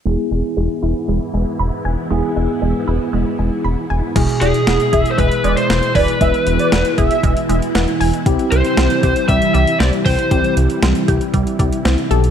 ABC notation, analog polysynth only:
X:1
M:4/4
L:1/16
Q:1/4=117
K:Ephr
V:1 name="Analog polysynth"
z16 | z16 | z2 d z3 e3 z d z3 d z | e z2 d z2 e3 z e z4 z |
z16 | z16 |]